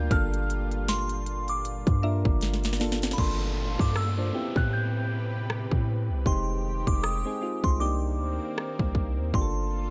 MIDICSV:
0, 0, Header, 1, 8, 480
1, 0, Start_track
1, 0, Tempo, 769231
1, 67, Time_signature, 4, 2, 24, 8
1, 6179, End_track
2, 0, Start_track
2, 0, Title_t, "Synth bell"
2, 0, Program_c, 0, 98
2, 0, Note_on_c, 0, 91, 103
2, 73, Note_on_c, 0, 89, 103
2, 85, Note_off_c, 0, 91, 0
2, 554, Note_on_c, 0, 84, 101
2, 564, Note_off_c, 0, 89, 0
2, 905, Note_off_c, 0, 84, 0
2, 932, Note_on_c, 0, 86, 91
2, 1485, Note_off_c, 0, 86, 0
2, 1956, Note_on_c, 0, 83, 66
2, 1990, Note_off_c, 0, 83, 0
2, 1992, Note_on_c, 0, 84, 85
2, 2375, Note_on_c, 0, 86, 75
2, 2380, Note_off_c, 0, 84, 0
2, 2474, Note_off_c, 0, 86, 0
2, 2474, Note_on_c, 0, 88, 98
2, 2853, Note_on_c, 0, 90, 101
2, 2861, Note_off_c, 0, 88, 0
2, 2953, Note_off_c, 0, 90, 0
2, 2953, Note_on_c, 0, 91, 95
2, 3645, Note_off_c, 0, 91, 0
2, 3911, Note_on_c, 0, 84, 90
2, 4288, Note_on_c, 0, 86, 91
2, 4300, Note_off_c, 0, 84, 0
2, 4389, Note_on_c, 0, 87, 106
2, 4391, Note_off_c, 0, 86, 0
2, 4768, Note_on_c, 0, 84, 90
2, 4779, Note_off_c, 0, 87, 0
2, 4869, Note_on_c, 0, 86, 88
2, 4871, Note_off_c, 0, 84, 0
2, 5563, Note_off_c, 0, 86, 0
2, 5833, Note_on_c, 0, 84, 87
2, 6179, Note_off_c, 0, 84, 0
2, 6179, End_track
3, 0, Start_track
3, 0, Title_t, "Synth pluck"
3, 0, Program_c, 1, 84
3, 0, Note_on_c, 1, 72, 58
3, 0, Note_on_c, 1, 74, 74
3, 519, Note_off_c, 1, 72, 0
3, 1268, Note_on_c, 1, 76, 82
3, 1480, Note_off_c, 1, 74, 0
3, 2203, Note_off_c, 1, 76, 0
3, 6179, End_track
4, 0, Start_track
4, 0, Title_t, "Synth keys"
4, 0, Program_c, 2, 88
4, 0, Control_c, 2, 64, 127
4, 0, Note_on_c, 2, 58, 71
4, 0, Note_on_c, 2, 62, 63
4, 0, Note_on_c, 2, 65, 63
4, 0, Note_on_c, 2, 67, 83
4, 0, Note_on_c, 2, 70, 75
4, 65, Note_off_c, 2, 58, 0
4, 65, Note_on_c, 2, 58, 78
4, 68, Note_off_c, 2, 62, 0
4, 68, Note_on_c, 2, 62, 66
4, 72, Note_off_c, 2, 65, 0
4, 72, Note_on_c, 2, 65, 69
4, 75, Note_on_c, 2, 69, 82
4, 743, Note_off_c, 2, 58, 0
4, 745, Note_off_c, 2, 62, 0
4, 747, Note_off_c, 2, 65, 0
4, 748, Note_off_c, 2, 69, 0
4, 1263, Note_on_c, 2, 58, 73
4, 1267, Note_on_c, 2, 62, 70
4, 1270, Note_on_c, 2, 65, 66
4, 1273, Note_off_c, 2, 70, 0
4, 1273, Note_on_c, 2, 70, 78
4, 1615, Note_off_c, 2, 58, 0
4, 1617, Note_off_c, 2, 62, 0
4, 1618, Note_off_c, 2, 65, 0
4, 1620, Note_off_c, 2, 70, 0
4, 1744, Note_on_c, 2, 58, 81
4, 1747, Note_on_c, 2, 62, 75
4, 1751, Note_on_c, 2, 65, 74
4, 1755, Note_on_c, 2, 69, 86
4, 1924, Note_off_c, 2, 58, 0
4, 1926, Note_off_c, 2, 62, 0
4, 1928, Note_off_c, 2, 65, 0
4, 1930, Note_off_c, 2, 69, 0
4, 1982, Note_on_c, 2, 58, 69
4, 1985, Note_on_c, 2, 62, 63
4, 1989, Note_on_c, 2, 65, 64
4, 1992, Note_on_c, 2, 69, 81
4, 1995, Control_c, 2, 64, 0
4, 1997, Note_off_c, 2, 67, 0
4, 2114, Control_c, 2, 64, 127
4, 2413, Note_off_c, 2, 58, 0
4, 2414, Note_off_c, 2, 62, 0
4, 2416, Note_off_c, 2, 65, 0
4, 2418, Note_off_c, 2, 69, 0
4, 2602, Note_on_c, 2, 58, 62
4, 2605, Note_on_c, 2, 62, 61
4, 2608, Note_on_c, 2, 65, 61
4, 2612, Note_on_c, 2, 72, 75
4, 2674, Note_off_c, 2, 58, 0
4, 2676, Note_off_c, 2, 62, 0
4, 2677, Note_off_c, 2, 65, 0
4, 2679, Note_off_c, 2, 72, 0
4, 2702, Note_on_c, 2, 59, 73
4, 2706, Note_on_c, 2, 60, 68
4, 2709, Note_on_c, 2, 64, 68
4, 2712, Note_on_c, 2, 67, 82
4, 2715, Control_c, 2, 64, 0
4, 2823, Control_c, 2, 64, 127
4, 3480, Note_off_c, 2, 59, 0
4, 3482, Note_off_c, 2, 60, 0
4, 3484, Note_off_c, 2, 64, 0
4, 3485, Note_off_c, 2, 67, 0
4, 3904, Note_on_c, 2, 55, 56
4, 3906, Note_on_c, 2, 60, 64
4, 3910, Note_on_c, 2, 63, 68
4, 3913, Note_on_c, 2, 67, 80
4, 3914, Control_c, 2, 64, 0
4, 3944, Note_on_c, 2, 56, 68
4, 3952, Note_off_c, 2, 55, 0
4, 4018, Control_c, 2, 64, 127
4, 4335, Note_off_c, 2, 60, 0
4, 4337, Note_off_c, 2, 63, 0
4, 4338, Note_off_c, 2, 67, 0
4, 4353, Note_off_c, 2, 56, 0
4, 4524, Note_on_c, 2, 56, 69
4, 4527, Note_on_c, 2, 60, 61
4, 4530, Note_on_c, 2, 63, 60
4, 4534, Note_on_c, 2, 68, 75
4, 4595, Note_off_c, 2, 56, 0
4, 4597, Note_off_c, 2, 60, 0
4, 4598, Note_off_c, 2, 63, 0
4, 4600, Note_off_c, 2, 68, 0
4, 4624, Note_on_c, 2, 56, 73
4, 4627, Note_on_c, 2, 60, 69
4, 4630, Note_on_c, 2, 63, 66
4, 4634, Note_on_c, 2, 65, 80
4, 4864, Note_off_c, 2, 63, 0
4, 4865, Note_on_c, 2, 58, 76
4, 4866, Note_off_c, 2, 56, 0
4, 4867, Note_off_c, 2, 60, 0
4, 4868, Note_on_c, 2, 62, 70
4, 4870, Note_off_c, 2, 65, 0
4, 4872, Note_on_c, 2, 63, 69
4, 4875, Control_c, 2, 64, 0
4, 4875, Note_on_c, 2, 67, 86
4, 4994, Control_c, 2, 64, 127
4, 5642, Note_off_c, 2, 58, 0
4, 5643, Note_off_c, 2, 62, 0
4, 5645, Note_off_c, 2, 63, 0
4, 5647, Note_off_c, 2, 67, 0
4, 5825, Note_on_c, 2, 58, 67
4, 5828, Note_on_c, 2, 62, 67
4, 5831, Note_on_c, 2, 65, 65
4, 5835, Control_c, 2, 64, 0
4, 5835, Note_on_c, 2, 67, 64
4, 5874, Note_on_c, 2, 69, 79
4, 5878, Note_off_c, 2, 67, 0
4, 5925, Control_c, 2, 64, 127
4, 6179, Note_off_c, 2, 58, 0
4, 6179, Note_off_c, 2, 62, 0
4, 6179, Note_off_c, 2, 65, 0
4, 6179, Note_off_c, 2, 69, 0
4, 6179, End_track
5, 0, Start_track
5, 0, Title_t, "Analog synth pad"
5, 0, Program_c, 3, 89
5, 0, Note_on_c, 3, 46, 81
5, 0, Note_on_c, 3, 55, 77
5, 0, Note_on_c, 3, 65, 86
5, 1961, Note_off_c, 3, 55, 0
5, 1962, Note_off_c, 3, 46, 0
5, 1962, Note_off_c, 3, 65, 0
5, 1987, Note_on_c, 3, 65, 86
5, 1987, Note_on_c, 3, 69, 73
5, 1988, Note_on_c, 3, 46, 72
5, 2700, Note_off_c, 3, 46, 0
5, 2700, Note_off_c, 3, 65, 0
5, 2700, Note_off_c, 3, 69, 0
5, 2706, Note_on_c, 3, 48, 79
5, 2706, Note_on_c, 3, 67, 89
5, 2708, Note_on_c, 3, 71, 71
5, 3894, Note_off_c, 3, 67, 0
5, 3895, Note_off_c, 3, 48, 0
5, 3895, Note_off_c, 3, 71, 0
5, 3904, Note_on_c, 3, 51, 75
5, 3904, Note_on_c, 3, 56, 69
5, 3904, Note_on_c, 3, 67, 86
5, 4856, Note_off_c, 3, 51, 0
5, 4856, Note_off_c, 3, 56, 0
5, 4856, Note_off_c, 3, 67, 0
5, 4865, Note_on_c, 3, 51, 75
5, 4865, Note_on_c, 3, 58, 67
5, 4866, Note_on_c, 3, 60, 81
5, 5817, Note_off_c, 3, 51, 0
5, 5817, Note_off_c, 3, 58, 0
5, 5817, Note_off_c, 3, 60, 0
5, 5825, Note_on_c, 3, 46, 73
5, 5827, Note_on_c, 3, 65, 85
5, 5827, Note_on_c, 3, 69, 66
5, 6179, Note_off_c, 3, 46, 0
5, 6179, Note_off_c, 3, 65, 0
5, 6179, Note_off_c, 3, 69, 0
5, 6179, End_track
6, 0, Start_track
6, 0, Title_t, "808-style bass"
6, 0, Program_c, 4, 38
6, 68, Note_on_c, 4, 31, 113
6, 1142, Note_off_c, 4, 31, 0
6, 1166, Note_on_c, 4, 43, 103
6, 1396, Note_off_c, 4, 43, 0
6, 1405, Note_on_c, 4, 31, 101
6, 1963, Note_off_c, 4, 31, 0
6, 1985, Note_on_c, 4, 31, 105
6, 2350, Note_off_c, 4, 31, 0
6, 2367, Note_on_c, 4, 43, 102
6, 2694, Note_off_c, 4, 43, 0
6, 2845, Note_on_c, 4, 45, 98
6, 3541, Note_off_c, 4, 45, 0
6, 3565, Note_on_c, 4, 45, 97
6, 3804, Note_on_c, 4, 36, 101
6, 3813, Note_off_c, 4, 45, 0
6, 3901, Note_off_c, 4, 36, 0
6, 3905, Note_on_c, 4, 29, 109
6, 4270, Note_off_c, 4, 29, 0
6, 4288, Note_on_c, 4, 29, 101
6, 4517, Note_off_c, 4, 29, 0
6, 4766, Note_on_c, 4, 36, 105
6, 5105, Note_on_c, 4, 38, 91
6, 5115, Note_off_c, 4, 36, 0
6, 5238, Note_off_c, 4, 38, 0
6, 5487, Note_on_c, 4, 36, 102
6, 5726, Note_on_c, 4, 39, 101
6, 5735, Note_off_c, 4, 36, 0
6, 5822, Note_off_c, 4, 39, 0
6, 5827, Note_on_c, 4, 31, 103
6, 6179, Note_off_c, 4, 31, 0
6, 6179, End_track
7, 0, Start_track
7, 0, Title_t, "Downlifter"
7, 0, Program_c, 5, 103
7, 1987, Note_on_c, 5, 60, 80
7, 5827, Note_off_c, 5, 60, 0
7, 6179, End_track
8, 0, Start_track
8, 0, Title_t, "Drums"
8, 68, Note_on_c, 9, 36, 111
8, 69, Note_on_c, 9, 42, 85
8, 130, Note_off_c, 9, 36, 0
8, 131, Note_off_c, 9, 42, 0
8, 209, Note_on_c, 9, 42, 45
8, 272, Note_off_c, 9, 42, 0
8, 312, Note_on_c, 9, 42, 76
8, 375, Note_off_c, 9, 42, 0
8, 446, Note_on_c, 9, 42, 48
8, 508, Note_off_c, 9, 42, 0
8, 552, Note_on_c, 9, 38, 102
8, 554, Note_on_c, 9, 42, 73
8, 614, Note_off_c, 9, 38, 0
8, 617, Note_off_c, 9, 42, 0
8, 683, Note_on_c, 9, 42, 57
8, 745, Note_off_c, 9, 42, 0
8, 789, Note_on_c, 9, 42, 69
8, 851, Note_off_c, 9, 42, 0
8, 924, Note_on_c, 9, 42, 51
8, 986, Note_off_c, 9, 42, 0
8, 1029, Note_on_c, 9, 42, 76
8, 1092, Note_off_c, 9, 42, 0
8, 1166, Note_on_c, 9, 36, 97
8, 1167, Note_on_c, 9, 42, 51
8, 1228, Note_off_c, 9, 36, 0
8, 1229, Note_off_c, 9, 42, 0
8, 1405, Note_on_c, 9, 36, 96
8, 1468, Note_off_c, 9, 36, 0
8, 1505, Note_on_c, 9, 42, 66
8, 1513, Note_on_c, 9, 38, 60
8, 1567, Note_off_c, 9, 42, 0
8, 1575, Note_off_c, 9, 38, 0
8, 1582, Note_on_c, 9, 38, 59
8, 1645, Note_off_c, 9, 38, 0
8, 1645, Note_on_c, 9, 42, 49
8, 1652, Note_on_c, 9, 38, 78
8, 1703, Note_off_c, 9, 38, 0
8, 1703, Note_on_c, 9, 38, 71
8, 1707, Note_off_c, 9, 42, 0
8, 1746, Note_on_c, 9, 42, 47
8, 1746, Note_on_c, 9, 46, 60
8, 1753, Note_off_c, 9, 38, 0
8, 1753, Note_on_c, 9, 38, 94
8, 1808, Note_off_c, 9, 42, 0
8, 1809, Note_off_c, 9, 46, 0
8, 1815, Note_off_c, 9, 38, 0
8, 1822, Note_on_c, 9, 38, 80
8, 1885, Note_off_c, 9, 38, 0
8, 1885, Note_on_c, 9, 42, 48
8, 1892, Note_on_c, 9, 38, 105
8, 1942, Note_off_c, 9, 38, 0
8, 1942, Note_on_c, 9, 38, 97
8, 1948, Note_off_c, 9, 42, 0
8, 1985, Note_on_c, 9, 49, 89
8, 1986, Note_on_c, 9, 36, 105
8, 2004, Note_off_c, 9, 38, 0
8, 2047, Note_off_c, 9, 49, 0
8, 2048, Note_off_c, 9, 36, 0
8, 2367, Note_on_c, 9, 36, 97
8, 2430, Note_off_c, 9, 36, 0
8, 2469, Note_on_c, 9, 37, 102
8, 2531, Note_off_c, 9, 37, 0
8, 2845, Note_on_c, 9, 36, 89
8, 2907, Note_off_c, 9, 36, 0
8, 3431, Note_on_c, 9, 37, 114
8, 3494, Note_off_c, 9, 37, 0
8, 3566, Note_on_c, 9, 36, 80
8, 3628, Note_off_c, 9, 36, 0
8, 3905, Note_on_c, 9, 36, 103
8, 3968, Note_off_c, 9, 36, 0
8, 4287, Note_on_c, 9, 36, 91
8, 4350, Note_off_c, 9, 36, 0
8, 4391, Note_on_c, 9, 37, 98
8, 4453, Note_off_c, 9, 37, 0
8, 4765, Note_on_c, 9, 36, 92
8, 4828, Note_off_c, 9, 36, 0
8, 5353, Note_on_c, 9, 37, 108
8, 5415, Note_off_c, 9, 37, 0
8, 5488, Note_on_c, 9, 36, 84
8, 5550, Note_off_c, 9, 36, 0
8, 5584, Note_on_c, 9, 36, 84
8, 5646, Note_off_c, 9, 36, 0
8, 5827, Note_on_c, 9, 36, 106
8, 5889, Note_off_c, 9, 36, 0
8, 6179, End_track
0, 0, End_of_file